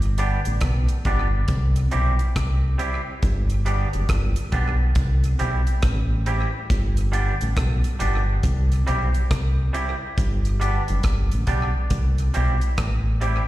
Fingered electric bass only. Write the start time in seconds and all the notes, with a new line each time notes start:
Already playing: G1
0.47 A1
0.62 B1
1.06 G1
1.49 C2
1.94 B1
2.37 C2
3.24 G1
3.95 F#1
4.10 G1
4.53 B1
4.97 C2
5.41 B1
5.84 A1
6.71 G1
7.42 A1
7.57 B1
8.01 G1
8.45 C2
8.89 B1
9.31 C2
10.18 G1
10.90 F#1
11.05 G1
11.33 A1
11.48 B1
11.91 C2
12.36 B1
12.79 A1